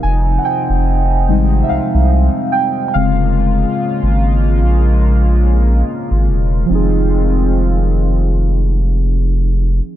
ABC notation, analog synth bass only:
X:1
M:4/4
L:1/16
Q:"Swing 16ths" 1/4=72
K:Fm
V:1 name="Analog synth bass" clef=bass
F,,,2 z F,,,3 A,,,2 C,, C,,2 z3 F,,,2- | F,,,2 z A,,,3 B,,,6 z A,,, =E,,,2 | F,,,16 |]